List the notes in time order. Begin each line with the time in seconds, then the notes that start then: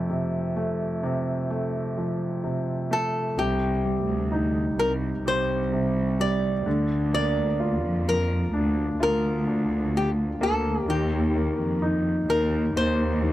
Already playing: F2 C3 F3 A3 F4
0.10 C3
0.56 A3
0.65 D#4
1.03 C3
1.50 A3
1.97 F3
2.43 C3
2.91 A3 A4
3.37 C2 C3 G4
3.85 G3
4.08 D2
4.32 D#4
4.78 C2 A#4
5.24 C2 G3 C5
5.73 C3
6.19 G3 D5
6.65 D2 D3
7.13 A#3 D5
7.60 F4
7.83 F2
8.09 A#4
8.53 D2 D4
9.00 D2 F4 A#4
9.47 D4
9.97 G4
10.41 D2 A#3 A4
10.87 D#2 D#3 G4
11.36 A#3
11.58 F2
11.82 D#4
12.29 D#2 A#4
12.76 D#2 A#3 C5
13.23 D#3